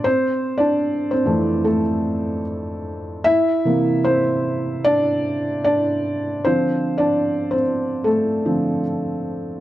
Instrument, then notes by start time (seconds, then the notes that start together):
felt piano
0.04 C4 C5
0.58 D4 D5
1.11 C4 C5
1.25 F2 E3 A3
1.64 A3 A4
3.24 E4 E5
3.65 C3 E3 A#3
4.04 C4 C5
4.84 D4 D5
5.64 D4 D5
6.45 D3 F3 C4 C5
6.98 D4 D5
7.51 C4 C5
8.04 A3 A4
8.45 D3 F3 C4